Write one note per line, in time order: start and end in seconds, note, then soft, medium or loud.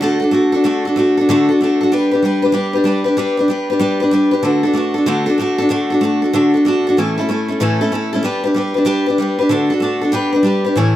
0.01 0.21 D3 medium
0.01 0.22 A3 medium
0.01 0.22 D4 medium
0.01 0.21 F#4 medium
0.01 0.18 A4 loud
0.20 0.31 D4 medium
0.20 0.32 F#4 medium
0.20 0.32 A4 medium
0.31 0.53 A3 medium
0.31 0.53 D4 medium
0.31 0.53 F#4 medium
0.31 0.51 A4 medium
0.52 0.64 D4 medium
0.52 0.65 F#4 medium
0.52 0.64 A4 medium
0.64 0.85 D3 medium
0.64 0.85 A3 medium
0.64 0.85 D4 medium
0.64 0.86 F#4 medium
0.64 0.84 A4 medium
0.85 0.96 D4 soft
0.85 0.97 F#4 medium
0.85 0.96 A4 medium
0.96 1.17 A3 medium
0.96 1.17 D4 medium
0.96 1.18 F#4 medium
0.96 1.16 A4 medium
1.17 1.29 D4 soft
1.17 1.29 F#4 soft
1.17 1.28 A4 medium
1.29 1.49 D3 loud
1.29 1.49 A3 loud
1.29 1.49 D4 loud
1.29 1.49 F#4 loud
1.29 1.47 A4 loud
1.49 1.61 D4 medium
1.49 1.60 F#4 medium
1.49 1.60 A4 medium
1.61 1.81 A3 medium
1.61 1.81 D4 medium
1.61 1.82 F#4 medium
1.61 1.79 A4 medium
1.81 1.91 D4 medium
1.81 1.93 F#4 medium
1.81 1.91 A4 medium
1.92 2.12 G3 medium
1.92 2.12 D4 medium
1.92 2.12 G4 medium
1.92 2.10 B4 loud
2.11 2.23 D4 soft
2.11 2.24 G4 medium
2.11 2.23 B4 medium
2.23 2.43 G3 medium
2.23 2.44 D4 medium
2.23 2.43 G4 medium
2.23 2.41 B4 medium
2.42 2.52 D4 soft
2.42 2.52 G4 medium
2.42 2.53 B4 medium
2.52 2.74 G3 medium
2.52 2.74 D4 medium
2.52 2.74 G4 medium
2.52 2.72 B4 medium
2.73 2.84 D4 soft
2.73 2.85 G4 medium
2.73 2.85 B4 medium
2.84 3.05 G3 medium
2.84 3.06 D4 medium
2.84 3.05 G4 medium
2.84 3.03 B4 medium
3.04 3.16 D4 medium
3.04 3.17 G4 medium
3.04 3.17 B4 medium
3.17 3.38 G3 medium
3.17 3.38 D4 medium
3.17 3.38 G4 medium
3.17 3.36 B4 loud
3.37 3.48 D4 medium
3.37 3.49 G4 medium
3.37 3.49 B4 medium
3.48 3.69 G3 medium
3.48 3.70 D4 medium
3.48 3.70 G4 medium
3.48 3.69 B4 medium
3.70 3.79 D4 soft
3.70 3.79 G4 medium
3.70 3.80 B4 medium
3.79 4.01 G3 medium
3.79 4.01 D4 loud
3.79 4.01 G4 medium
3.79 3.99 B4 medium
4.00 4.11 D4 medium
4.00 4.12 G4 medium
4.00 4.12 B4 medium
4.11 4.32 G3 medium
4.11 4.33 D4 medium
4.11 4.32 G4 medium
4.11 4.30 B4 medium
4.31 4.43 D4 soft
4.31 4.44 G4 medium
4.31 4.43 B4 medium
4.43 4.64 D3 medium
4.43 4.64 A3 medium
4.43 4.65 D4 medium
4.43 4.64 F#4 medium
4.43 4.62 A4 medium
4.63 4.73 D4 medium
4.63 4.75 F#4 medium
4.63 4.75 A4 medium
4.73 4.95 A3 medium
4.73 4.96 D4 medium
4.73 4.95 F#4 medium
4.73 4.93 A4 medium
4.94 5.06 D4 soft
4.94 5.07 F#4 soft
4.94 5.06 A4 medium
5.06 5.27 D3 medium
5.06 5.28 A3 loud
5.06 5.28 D4 medium
5.06 5.26 F#4 loud
5.06 5.25 A4 medium
5.26 5.38 D4 medium
5.26 5.39 F#4 medium
5.26 5.38 A4 medium
5.38 5.59 A3 medium
5.38 5.60 D4 medium
5.38 5.59 F#4 medium
5.38 5.57 A4 medium
5.58 5.70 D4 medium
5.58 5.70 F#4 medium
5.58 5.70 A4 medium
5.69 5.90 D3 medium
5.69 5.91 A3 medium
5.69 5.91 D4 medium
5.69 5.91 F#4 medium
5.69 5.89 A4 medium
5.90 6.02 D4 medium
5.90 6.03 F#4 medium
5.90 6.02 A4 medium
6.01 6.22 A3 medium
6.01 6.23 D4 medium
6.01 6.23 F#4 medium
6.01 6.21 A4 medium
6.22 6.33 D4 soft
6.22 6.34 F#4 medium
6.22 6.34 A4 medium
6.33 6.54 D3 loud
6.33 6.55 A3 medium
6.33 6.55 D4 loud
6.33 6.54 F#4 loud
6.33 6.53 A4 loud
6.54 6.65 D4 medium
6.54 6.66 F#4 medium
6.54 6.65 A4 medium
6.65 6.86 A3 medium
6.65 6.86 D4 medium
6.65 6.87 F#4 medium
6.65 6.86 A4 medium
6.87 6.98 D4 medium
6.87 6.99 F#4 medium
6.87 6.98 A4 medium
6.97 7.18 A2 medium
6.97 7.18 E3 medium
6.97 7.18 A3 medium
6.97 7.18 C#4 medium
6.97 7.18 E4 medium
6.97 7.16 A4 medium
7.18 7.27 A3 soft
7.18 7.28 C#4 medium
7.18 7.30 E4 medium
7.18 7.29 A4 medium
7.29 7.49 A3 medium
7.29 7.49 C#4 medium
7.29 7.48 E4 medium
7.29 7.47 A4 medium
7.48 7.60 A3 soft
7.48 7.60 C#4 soft
7.48 7.61 E4 medium
7.48 7.60 A4 medium
7.60 7.81 A2 medium
7.60 7.81 E3 loud
7.60 7.81 A3 loud
7.60 7.82 C#4 medium
7.60 7.80 E4 medium
7.60 7.80 A4 medium
7.81 7.91 A3 medium
7.81 7.91 C#4 medium
7.81 7.93 E4 medium
7.81 7.92 A4 medium
7.92 8.13 A3 medium
7.92 8.13 C#4 medium
7.92 8.13 E4 medium
7.92 8.12 A4 medium
8.13 8.22 A3 medium
8.13 8.24 C#4 medium
8.13 8.24 E4 medium
8.13 8.24 A4 medium
8.23 8.44 G3 medium
8.23 8.45 D4 medium
8.23 8.44 G4 medium
8.23 8.42 B4 loud
8.44 8.55 D4 soft
8.44 8.56 G4 medium
8.44 8.55 B4 medium
8.54 8.75 G3 medium
8.54 8.76 D4 medium
8.54 8.76 G4 medium
8.54 8.73 B4 medium
8.74 8.84 D4 soft
8.74 8.85 G4 medium
8.74 8.86 B4 medium
8.85 9.06 G3 medium
8.85 9.07 D4 loud
8.85 9.07 G4 loud
8.85 9.05 B4 loud
9.06 9.18 D4 soft
9.06 9.19 G4 medium
9.06 9.18 B4 medium
9.18 9.39 G3 medium
9.18 9.40 D4 medium
9.18 9.39 G4 medium
9.18 9.37 B4 medium
9.39 9.50 D4 medium
9.39 9.51 G4 medium
9.39 9.50 B4 medium
9.49 9.70 D3 medium
9.49 9.71 A3 medium
9.49 9.71 D4 loud
9.49 9.71 F#4 medium
9.49 9.69 A4 loud
9.70 9.81 D4 medium
9.70 9.82 F#4 medium
9.70 9.82 A4 medium
9.80 10.02 A3 medium
9.80 10.03 D4 medium
9.80 10.02 F#4 medium
9.80 10.00 A4 medium
10.01 10.12 D4 soft
10.01 10.13 F#4 soft
10.01 10.13 A4 medium
10.12 10.33 G3 medium
10.12 10.34 D4 loud
10.12 10.33 G4 loud
10.12 10.31 B4 loud
10.33 10.43 D4 medium
10.33 10.44 G4 medium
10.33 10.44 B4 medium
10.43 10.65 G3 medium
10.43 10.65 D4 medium
10.43 10.65 G4 medium
10.43 10.63 B4 medium
10.65 10.77 D4 soft
10.65 10.77 G4 medium
10.65 10.76 B4 medium
10.76 10.96 A2 medium
10.76 10.96 E3 medium
10.76 10.96 A3 medium
10.76 10.96 C#4 medium
10.76 10.96 E4 medium
10.76 10.95 C#5 medium